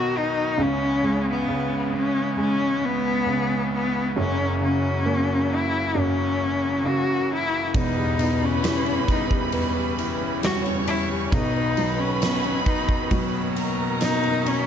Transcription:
Already playing: B1 B2 D#3 F#3 D#4 F#4 A#4
0.17 D#4
0.57 C#2 C#3 E3 G#3 B3
0.62 C#4
1.03 G#3
1.30 B3
1.48 C#3
1.97 C#4
2.37 G#3 C#4
2.85 B3
3.26 C#3
3.75 B3
4.15 F#1 F#2 E3 F#3 A#3
4.20 C#4
4.61 C#3 C#4
5.06 A#3
5.55 E4
5.95 F#2 C#4
6.84 C#3 F#4
7.33 E4
7.73 E1 E2 E3 G3 B3 B4 B5, kick, ride, tambourine
7.77 D#4
7.97 G3
8.19 B2 E4, ride, tambourine
8.42 C#4
8.63 E3 G3, snare, ride, tambourine
8.86 C#4, ride
9.08 D#4, kick, ride, tambourine
9.31 G3, kick
9.52 E2 B3 C#4, ride, tambourine
9.76 G3
9.98 E4, ride, tambourine
10.21 C#4
10.42 G3 F#4 C#5 C#6, snare, ride, tambourine
10.66 C#4, ride
10.87 E4, ride, tambourine
11.11 G3
11.31 B1 B2 D#3 F#3 D#4 B4 B5, kick, ride, tambourine
11.77 F#3 F#4, ride, tambourine
11.99 B3 C#4
12.22 B2, snare, ride, tambourine
12.44 B3, ride
12.66 D#4 F#4, kick, ride, tambourine
12.89 kick
13.11 B2 F#3 C#4, kick, ride, tambourine
13.34 A#3
13.55 F#4 A#4 A#5, ride, tambourine
13.78 B3
14.01 B2 A#3 D#4, snare, ride, tambourine
14.23 B3, ride
14.45 C#4 F#4, ride, tambourine

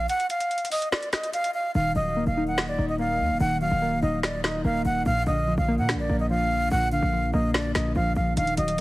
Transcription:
0.09 F#5, closed hi-hat
0.20 closed hi-hat
0.30 F5, closed hi-hat
0.40 closed hi-hat
0.51 closed hi-hat
0.58 closed hi-hat
0.65 closed hi-hat
0.71 D#5, open hi-hat
0.82 closed hi-hat
0.92 D5, finger snap, snare, closed hi-hat
1.03 closed hi-hat
1.13 D#5, finger snap, snare, closed hi-hat
1.23 closed hi-hat
1.33 F5, closed hi-hat
1.44 closed hi-hat
1.54 F5
1.75 D#1 D#3 F5
1.96 D#1 F#3 D#5
2.16 A#3
2.27 D#1 F5
2.37 D#4
2.47 F#5
2.58 D#5, finger snap, snare
2.68 D5
2.78 D#1 D#4
2.89 D#5
2.99 A#3 F5
3.20 D#2
3.30 D#1
3.40 D#1 D#3 F#5
3.61 F#3 F5
3.72 D#1
3.82 A#3
4.02 D#1 D#4 D#5
4.23 D5 D#5, finger snap, snare
4.44 D#4 D#5, finger snap, snare
4.65 D#1 A#3 F5
4.85 D#1 F#5
5.06 A#1 A#2 F5
5.27 A#1 D3 D#5
5.47 F3
5.58 A#1 F5
5.68 A#3
5.78 A#2 F#5
5.89 D4, finger snap, snare
5.94 A#1
5.99 D5
6.09 A#1 A#3
6.20 D#5
6.30 F3 F5
6.71 A#1 A#2 F#5
6.92 D3 F5
7.03 A#1
7.13 F3
7.33 A#1 A#3 D#5
7.54 D4 D5, finger snap, snare
7.75 A#1 A#3 D#5, finger snap, snare
7.96 A#1 F3 F5
8.16 A#1 F5
8.37 D#1 D#3 F5, closed hi-hat
8.47 closed hi-hat
8.57 D#1 F#3 D#5, closed hi-hat
8.68 closed hi-hat

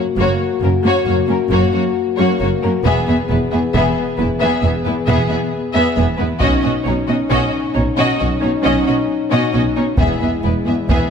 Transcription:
Already playing: A#3 F#4
0.17 F#1 F#2 A#3 F#4 C#5
0.61 F#1 F#2 A#3 C#4 A#4
0.83 F#2 A#3 F#4 C#5
1.06 F#1 F#2 A#3 F#4 C#5
1.27 F#2 A#3 C#4 A#4
1.50 F#1 F#2 A#3 F#4 C#5
1.73 F#2 A#3 F#4 C#5
2.17 F#2 A#3 F#4 C#5
2.40 F#1 F#2 A#3 F#4 C#5
2.62 F#2 A#3 C#4 A#4
2.85 E1 E2 B3 G#4 E5
3.07 E2 B3 G#4 E5
3.29 E1 E2 B3 E4 B4
3.51 E2 B3 G#4 E5
3.74 E1 E2 B3 G#4 E5
4.17 E1 E2 B3 E4 B4
4.40 E2 B3 G#4 E5
4.62 E1 E2 B3 G#4 E5
4.84 E2 B3 E4 B4
5.07 E1 E2 B3 G#4 E5
5.28 E2 B3 G#4 E5
5.73 E2 B3 G#4 E5
5.96 E1 E2 B3 G#4 E5
6.17 E2 B3 E4 B4
6.40 B1 B2 C#4 D#4 F#4 D#5, taiko
6.62 B2 C#4 F#4 D#5
6.84 B1 B2 C#4 D#4 C#5
7.07 B2 C#4 F#4 D#5
7.30 B1 B2 C#4 F#4 D#5
7.74 B1 B2 C#4 D#4 C#5
7.97 B2 C#4 F#4 D#5
8.18 B1 B2 C#4 F#4 D#5
8.40 B2 C#4 D#4 C#5
8.63 B1 B2 C#4 F#4 D#5
8.86 B2 C#4 F#4 D#5
9.31 B2 C#4 F#4 D#5
9.53 B1 B2 C#4 F#4 D#5
9.77 B2 C#4 D#4 C#5
9.96 E1 E2 G#3 B3 E4 G#4 E5, taiko
10.21 E2 B3 G#4 E5
10.44 E1 E2 B3 E4 B4
10.66 E2 B3 G#4 E5
10.89 E1 E2 B3 G#4 E5, taiko

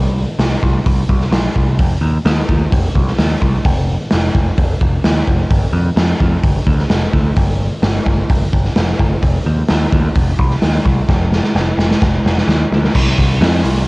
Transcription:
Already playing: C2
0.39 C2, snare, open hi-hat
0.63 C2, kick
0.86 C2, kick, open hi-hat
1.09 C2, kick
1.21 snare
1.31 B1, snare, open hi-hat
1.56 C2, kick
1.79 F1, kick, open hi-hat
2.01 D#2
2.25 D#2, snare, open hi-hat
2.49 D#2, kick
2.72 F1, kick, open hi-hat
2.95 C2, kick
3.08 snare
3.18 D#2, snare, open hi-hat
3.41 C2, kick
3.65 F1, kick, open hi-hat
4.11 F1, snare, open hi-hat
4.34 F1, kick
4.57 F1, kick, open hi-hat
4.81 F1, kick
5.04 D#2, snare, open hi-hat
5.27 F1, kick
5.50 G1, kick, open hi-hat
5.73 F2
5.96 F2, snare, open hi-hat
6.20 F2, kick
6.43 G1, kick, open hi-hat
6.67 D2, kick
6.79 snare
6.90 F1, snare, open hi-hat
7.13 D2, kick
7.36 G1, kick, open hi-hat
7.82 G1, snare, open hi-hat
8.06 G1, kick
8.30 G1, kick, open hi-hat
8.53 G1, kick
8.65 snare
8.76 F1, snare, open hi-hat
9.00 G1, kick
9.22 F1, kick, open hi-hat
9.46 D#2
9.69 D#2, snare, open hi-hat
9.92 D#2, kick
10.15 F1, kick, open hi-hat
10.39 C2, kick
10.50 snare
10.62 D#2, snare, open hi-hat
10.85 C2, kick
11.08 F1, kick, snare
11.32 snare
11.44 snare
11.55 F1, snare
11.78 F1, snare
11.91 snare
12.02 F1, kick, snare
12.25 F1, snare
12.38 snare
12.47 D#2, snare
12.71 D2, snare
12.84 snare
12.95 C2, kick, crash
13.07 snare
13.18 C2, kick, open hi-hat
13.41 F2, snare, open hi-hat
13.64 C2, open hi-hat

